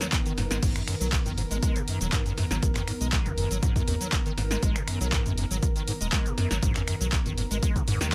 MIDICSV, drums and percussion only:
0, 0, Header, 1, 2, 480
1, 0, Start_track
1, 0, Key_signature, 5, "minor"
1, 0, Tempo, 500000
1, 601, Time_signature, 4, 2, 24, 8
1, 7821, End_track
2, 0, Start_track
2, 0, Title_t, "Drums"
2, 7, Note_on_c, 9, 38, 59
2, 7, Note_on_c, 9, 42, 43
2, 13, Note_on_c, 9, 69, 69
2, 103, Note_off_c, 9, 38, 0
2, 103, Note_off_c, 9, 42, 0
2, 109, Note_off_c, 9, 69, 0
2, 121, Note_on_c, 9, 36, 118
2, 121, Note_on_c, 9, 39, 122
2, 121, Note_on_c, 9, 42, 98
2, 127, Note_on_c, 9, 69, 57
2, 217, Note_off_c, 9, 36, 0
2, 217, Note_off_c, 9, 39, 0
2, 217, Note_off_c, 9, 42, 0
2, 223, Note_off_c, 9, 69, 0
2, 247, Note_on_c, 9, 42, 41
2, 253, Note_on_c, 9, 69, 35
2, 343, Note_off_c, 9, 42, 0
2, 349, Note_off_c, 9, 69, 0
2, 361, Note_on_c, 9, 38, 36
2, 361, Note_on_c, 9, 46, 86
2, 457, Note_off_c, 9, 38, 0
2, 457, Note_off_c, 9, 46, 0
2, 487, Note_on_c, 9, 38, 59
2, 487, Note_on_c, 9, 42, 43
2, 493, Note_on_c, 9, 69, 71
2, 583, Note_off_c, 9, 38, 0
2, 583, Note_off_c, 9, 42, 0
2, 589, Note_off_c, 9, 69, 0
2, 601, Note_on_c, 9, 36, 116
2, 601, Note_on_c, 9, 42, 96
2, 601, Note_on_c, 9, 49, 74
2, 607, Note_on_c, 9, 69, 54
2, 697, Note_off_c, 9, 36, 0
2, 697, Note_off_c, 9, 42, 0
2, 697, Note_off_c, 9, 49, 0
2, 703, Note_off_c, 9, 69, 0
2, 727, Note_on_c, 9, 26, 78
2, 727, Note_on_c, 9, 42, 43
2, 733, Note_on_c, 9, 69, 35
2, 823, Note_off_c, 9, 26, 0
2, 823, Note_off_c, 9, 42, 0
2, 829, Note_off_c, 9, 69, 0
2, 841, Note_on_c, 9, 26, 66
2, 841, Note_on_c, 9, 46, 105
2, 937, Note_off_c, 9, 26, 0
2, 937, Note_off_c, 9, 46, 0
2, 967, Note_on_c, 9, 42, 41
2, 974, Note_on_c, 9, 69, 67
2, 1063, Note_off_c, 9, 42, 0
2, 1070, Note_off_c, 9, 69, 0
2, 1081, Note_on_c, 9, 36, 127
2, 1081, Note_on_c, 9, 39, 125
2, 1081, Note_on_c, 9, 42, 97
2, 1087, Note_on_c, 9, 69, 57
2, 1177, Note_off_c, 9, 36, 0
2, 1177, Note_off_c, 9, 39, 0
2, 1177, Note_off_c, 9, 42, 0
2, 1183, Note_off_c, 9, 69, 0
2, 1208, Note_on_c, 9, 42, 41
2, 1208, Note_on_c, 9, 45, 82
2, 1214, Note_on_c, 9, 69, 34
2, 1304, Note_off_c, 9, 42, 0
2, 1304, Note_off_c, 9, 45, 0
2, 1310, Note_off_c, 9, 69, 0
2, 1321, Note_on_c, 9, 46, 100
2, 1417, Note_off_c, 9, 46, 0
2, 1447, Note_on_c, 9, 42, 43
2, 1454, Note_on_c, 9, 69, 72
2, 1543, Note_off_c, 9, 42, 0
2, 1550, Note_off_c, 9, 69, 0
2, 1561, Note_on_c, 9, 36, 122
2, 1561, Note_on_c, 9, 42, 94
2, 1567, Note_on_c, 9, 69, 57
2, 1657, Note_off_c, 9, 36, 0
2, 1657, Note_off_c, 9, 42, 0
2, 1663, Note_off_c, 9, 69, 0
2, 1687, Note_on_c, 9, 42, 43
2, 1694, Note_on_c, 9, 69, 34
2, 1783, Note_off_c, 9, 42, 0
2, 1790, Note_off_c, 9, 69, 0
2, 1801, Note_on_c, 9, 46, 105
2, 1897, Note_off_c, 9, 46, 0
2, 1927, Note_on_c, 9, 42, 41
2, 1934, Note_on_c, 9, 69, 68
2, 2023, Note_off_c, 9, 42, 0
2, 2030, Note_off_c, 9, 69, 0
2, 2041, Note_on_c, 9, 36, 120
2, 2041, Note_on_c, 9, 39, 125
2, 2041, Note_on_c, 9, 42, 95
2, 2047, Note_on_c, 9, 69, 57
2, 2137, Note_off_c, 9, 36, 0
2, 2137, Note_off_c, 9, 39, 0
2, 2137, Note_off_c, 9, 42, 0
2, 2143, Note_off_c, 9, 69, 0
2, 2167, Note_on_c, 9, 42, 39
2, 2174, Note_on_c, 9, 69, 33
2, 2263, Note_off_c, 9, 42, 0
2, 2270, Note_off_c, 9, 69, 0
2, 2281, Note_on_c, 9, 38, 34
2, 2281, Note_on_c, 9, 45, 90
2, 2281, Note_on_c, 9, 46, 92
2, 2377, Note_off_c, 9, 38, 0
2, 2377, Note_off_c, 9, 45, 0
2, 2377, Note_off_c, 9, 46, 0
2, 2407, Note_on_c, 9, 38, 59
2, 2407, Note_on_c, 9, 42, 42
2, 2413, Note_on_c, 9, 69, 68
2, 2503, Note_off_c, 9, 38, 0
2, 2503, Note_off_c, 9, 42, 0
2, 2509, Note_off_c, 9, 69, 0
2, 2521, Note_on_c, 9, 36, 126
2, 2521, Note_on_c, 9, 42, 93
2, 2527, Note_on_c, 9, 69, 52
2, 2617, Note_off_c, 9, 36, 0
2, 2617, Note_off_c, 9, 42, 0
2, 2623, Note_off_c, 9, 69, 0
2, 2647, Note_on_c, 9, 26, 80
2, 2647, Note_on_c, 9, 39, 39
2, 2647, Note_on_c, 9, 42, 43
2, 2647, Note_on_c, 9, 45, 95
2, 2653, Note_on_c, 9, 69, 35
2, 2743, Note_off_c, 9, 26, 0
2, 2743, Note_off_c, 9, 39, 0
2, 2743, Note_off_c, 9, 42, 0
2, 2743, Note_off_c, 9, 45, 0
2, 2749, Note_off_c, 9, 69, 0
2, 2760, Note_on_c, 9, 26, 65
2, 2760, Note_on_c, 9, 46, 110
2, 2856, Note_off_c, 9, 26, 0
2, 2856, Note_off_c, 9, 46, 0
2, 2887, Note_on_c, 9, 42, 41
2, 2894, Note_on_c, 9, 69, 62
2, 2983, Note_off_c, 9, 42, 0
2, 2990, Note_off_c, 9, 69, 0
2, 3001, Note_on_c, 9, 36, 126
2, 3001, Note_on_c, 9, 39, 125
2, 3001, Note_on_c, 9, 42, 93
2, 3008, Note_on_c, 9, 69, 55
2, 3097, Note_off_c, 9, 36, 0
2, 3097, Note_off_c, 9, 39, 0
2, 3097, Note_off_c, 9, 42, 0
2, 3104, Note_off_c, 9, 69, 0
2, 3127, Note_on_c, 9, 42, 41
2, 3127, Note_on_c, 9, 45, 87
2, 3134, Note_on_c, 9, 69, 32
2, 3223, Note_off_c, 9, 42, 0
2, 3223, Note_off_c, 9, 45, 0
2, 3230, Note_off_c, 9, 69, 0
2, 3241, Note_on_c, 9, 46, 99
2, 3337, Note_off_c, 9, 46, 0
2, 3367, Note_on_c, 9, 42, 42
2, 3374, Note_on_c, 9, 69, 66
2, 3463, Note_off_c, 9, 42, 0
2, 3470, Note_off_c, 9, 69, 0
2, 3481, Note_on_c, 9, 36, 126
2, 3481, Note_on_c, 9, 42, 93
2, 3488, Note_on_c, 9, 69, 54
2, 3577, Note_off_c, 9, 36, 0
2, 3577, Note_off_c, 9, 42, 0
2, 3584, Note_off_c, 9, 69, 0
2, 3607, Note_on_c, 9, 36, 65
2, 3607, Note_on_c, 9, 42, 42
2, 3614, Note_on_c, 9, 69, 34
2, 3703, Note_off_c, 9, 36, 0
2, 3703, Note_off_c, 9, 42, 0
2, 3710, Note_off_c, 9, 69, 0
2, 3721, Note_on_c, 9, 45, 95
2, 3721, Note_on_c, 9, 46, 112
2, 3817, Note_off_c, 9, 45, 0
2, 3817, Note_off_c, 9, 46, 0
2, 3847, Note_on_c, 9, 42, 41
2, 3854, Note_on_c, 9, 69, 68
2, 3943, Note_off_c, 9, 42, 0
2, 3950, Note_off_c, 9, 69, 0
2, 3961, Note_on_c, 9, 36, 127
2, 3961, Note_on_c, 9, 39, 127
2, 3961, Note_on_c, 9, 42, 97
2, 3967, Note_on_c, 9, 69, 56
2, 4057, Note_off_c, 9, 36, 0
2, 4057, Note_off_c, 9, 39, 0
2, 4057, Note_off_c, 9, 42, 0
2, 4063, Note_off_c, 9, 69, 0
2, 4087, Note_on_c, 9, 42, 39
2, 4094, Note_on_c, 9, 69, 30
2, 4183, Note_off_c, 9, 42, 0
2, 4190, Note_off_c, 9, 69, 0
2, 4201, Note_on_c, 9, 38, 37
2, 4201, Note_on_c, 9, 46, 95
2, 4297, Note_off_c, 9, 38, 0
2, 4297, Note_off_c, 9, 46, 0
2, 4327, Note_on_c, 9, 38, 63
2, 4327, Note_on_c, 9, 42, 41
2, 4334, Note_on_c, 9, 69, 65
2, 4423, Note_off_c, 9, 38, 0
2, 4423, Note_off_c, 9, 42, 0
2, 4430, Note_off_c, 9, 69, 0
2, 4441, Note_on_c, 9, 36, 125
2, 4441, Note_on_c, 9, 42, 93
2, 4447, Note_on_c, 9, 69, 50
2, 4537, Note_off_c, 9, 36, 0
2, 4537, Note_off_c, 9, 42, 0
2, 4543, Note_off_c, 9, 69, 0
2, 4567, Note_on_c, 9, 26, 79
2, 4567, Note_on_c, 9, 42, 39
2, 4574, Note_on_c, 9, 69, 33
2, 4663, Note_off_c, 9, 26, 0
2, 4663, Note_off_c, 9, 42, 0
2, 4670, Note_off_c, 9, 69, 0
2, 4681, Note_on_c, 9, 26, 65
2, 4681, Note_on_c, 9, 46, 108
2, 4777, Note_off_c, 9, 26, 0
2, 4777, Note_off_c, 9, 46, 0
2, 4808, Note_on_c, 9, 42, 38
2, 4814, Note_on_c, 9, 69, 66
2, 4904, Note_off_c, 9, 42, 0
2, 4910, Note_off_c, 9, 69, 0
2, 4921, Note_on_c, 9, 36, 123
2, 4921, Note_on_c, 9, 39, 122
2, 4921, Note_on_c, 9, 42, 91
2, 4928, Note_on_c, 9, 69, 55
2, 5017, Note_off_c, 9, 36, 0
2, 5017, Note_off_c, 9, 39, 0
2, 5017, Note_off_c, 9, 42, 0
2, 5024, Note_off_c, 9, 69, 0
2, 5048, Note_on_c, 9, 42, 38
2, 5048, Note_on_c, 9, 45, 89
2, 5054, Note_on_c, 9, 69, 33
2, 5144, Note_off_c, 9, 42, 0
2, 5144, Note_off_c, 9, 45, 0
2, 5150, Note_off_c, 9, 69, 0
2, 5161, Note_on_c, 9, 46, 102
2, 5257, Note_off_c, 9, 46, 0
2, 5287, Note_on_c, 9, 42, 41
2, 5294, Note_on_c, 9, 69, 68
2, 5383, Note_off_c, 9, 42, 0
2, 5390, Note_off_c, 9, 69, 0
2, 5401, Note_on_c, 9, 36, 127
2, 5401, Note_on_c, 9, 42, 88
2, 5407, Note_on_c, 9, 69, 54
2, 5497, Note_off_c, 9, 36, 0
2, 5497, Note_off_c, 9, 42, 0
2, 5503, Note_off_c, 9, 69, 0
2, 5527, Note_on_c, 9, 42, 41
2, 5533, Note_on_c, 9, 69, 34
2, 5623, Note_off_c, 9, 42, 0
2, 5629, Note_off_c, 9, 69, 0
2, 5641, Note_on_c, 9, 46, 115
2, 5737, Note_off_c, 9, 46, 0
2, 5767, Note_on_c, 9, 42, 39
2, 5773, Note_on_c, 9, 69, 66
2, 5863, Note_off_c, 9, 42, 0
2, 5869, Note_off_c, 9, 69, 0
2, 5881, Note_on_c, 9, 36, 124
2, 5881, Note_on_c, 9, 39, 125
2, 5881, Note_on_c, 9, 42, 93
2, 5887, Note_on_c, 9, 69, 54
2, 5977, Note_off_c, 9, 36, 0
2, 5977, Note_off_c, 9, 39, 0
2, 5977, Note_off_c, 9, 42, 0
2, 5983, Note_off_c, 9, 69, 0
2, 6007, Note_on_c, 9, 42, 37
2, 6014, Note_on_c, 9, 69, 32
2, 6103, Note_off_c, 9, 42, 0
2, 6110, Note_off_c, 9, 69, 0
2, 6122, Note_on_c, 9, 38, 36
2, 6122, Note_on_c, 9, 45, 97
2, 6122, Note_on_c, 9, 46, 100
2, 6218, Note_off_c, 9, 38, 0
2, 6218, Note_off_c, 9, 45, 0
2, 6218, Note_off_c, 9, 46, 0
2, 6247, Note_on_c, 9, 38, 65
2, 6247, Note_on_c, 9, 42, 39
2, 6253, Note_on_c, 9, 69, 66
2, 6343, Note_off_c, 9, 38, 0
2, 6343, Note_off_c, 9, 42, 0
2, 6349, Note_off_c, 9, 69, 0
2, 6361, Note_on_c, 9, 36, 124
2, 6361, Note_on_c, 9, 42, 88
2, 6367, Note_on_c, 9, 69, 54
2, 6457, Note_off_c, 9, 36, 0
2, 6457, Note_off_c, 9, 42, 0
2, 6463, Note_off_c, 9, 69, 0
2, 6487, Note_on_c, 9, 26, 85
2, 6487, Note_on_c, 9, 39, 39
2, 6487, Note_on_c, 9, 42, 39
2, 6487, Note_on_c, 9, 45, 90
2, 6494, Note_on_c, 9, 69, 33
2, 6583, Note_off_c, 9, 26, 0
2, 6583, Note_off_c, 9, 39, 0
2, 6583, Note_off_c, 9, 42, 0
2, 6583, Note_off_c, 9, 45, 0
2, 6590, Note_off_c, 9, 69, 0
2, 6601, Note_on_c, 9, 26, 69
2, 6601, Note_on_c, 9, 46, 106
2, 6697, Note_off_c, 9, 26, 0
2, 6697, Note_off_c, 9, 46, 0
2, 6727, Note_on_c, 9, 42, 39
2, 6733, Note_on_c, 9, 69, 67
2, 6823, Note_off_c, 9, 42, 0
2, 6829, Note_off_c, 9, 69, 0
2, 6840, Note_on_c, 9, 39, 120
2, 6840, Note_on_c, 9, 42, 89
2, 6841, Note_on_c, 9, 36, 127
2, 6847, Note_on_c, 9, 69, 56
2, 6936, Note_off_c, 9, 39, 0
2, 6936, Note_off_c, 9, 42, 0
2, 6937, Note_off_c, 9, 36, 0
2, 6943, Note_off_c, 9, 69, 0
2, 6967, Note_on_c, 9, 42, 39
2, 6967, Note_on_c, 9, 45, 87
2, 6974, Note_on_c, 9, 69, 33
2, 7063, Note_off_c, 9, 42, 0
2, 7063, Note_off_c, 9, 45, 0
2, 7070, Note_off_c, 9, 69, 0
2, 7081, Note_on_c, 9, 46, 98
2, 7177, Note_off_c, 9, 46, 0
2, 7207, Note_on_c, 9, 42, 39
2, 7214, Note_on_c, 9, 69, 67
2, 7303, Note_off_c, 9, 42, 0
2, 7310, Note_off_c, 9, 69, 0
2, 7321, Note_on_c, 9, 36, 121
2, 7321, Note_on_c, 9, 42, 88
2, 7327, Note_on_c, 9, 69, 57
2, 7417, Note_off_c, 9, 36, 0
2, 7417, Note_off_c, 9, 42, 0
2, 7423, Note_off_c, 9, 69, 0
2, 7447, Note_on_c, 9, 36, 64
2, 7447, Note_on_c, 9, 42, 40
2, 7454, Note_on_c, 9, 69, 33
2, 7543, Note_off_c, 9, 36, 0
2, 7543, Note_off_c, 9, 42, 0
2, 7550, Note_off_c, 9, 69, 0
2, 7561, Note_on_c, 9, 45, 93
2, 7561, Note_on_c, 9, 46, 111
2, 7657, Note_off_c, 9, 45, 0
2, 7657, Note_off_c, 9, 46, 0
2, 7687, Note_on_c, 9, 38, 67
2, 7687, Note_on_c, 9, 42, 38
2, 7694, Note_on_c, 9, 69, 66
2, 7783, Note_off_c, 9, 38, 0
2, 7783, Note_off_c, 9, 42, 0
2, 7790, Note_off_c, 9, 69, 0
2, 7821, End_track
0, 0, End_of_file